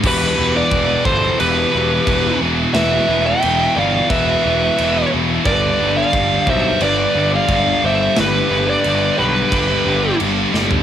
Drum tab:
CC |x---x---x---x---|x---x---x---x---|x---x---x---x---|x---x---x---x---|
SD |----------------|o---------------|----------------|o-------------o-|
FT |----------------|----------------|----------------|---------------o|
BD |o---o-o-----o---|--------o-------|o---o-o-----o---|--------o-------|